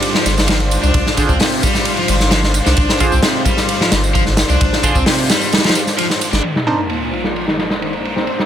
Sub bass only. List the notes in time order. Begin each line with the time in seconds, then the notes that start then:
0.26 G1
0.83 C2
0.94 C2
1.29 C2
2.09 G1
2.66 C2
2.78 C2
3.12 C2
3.92 G1
4.49 C2
4.61 C2
4.95 C2
6.33 G1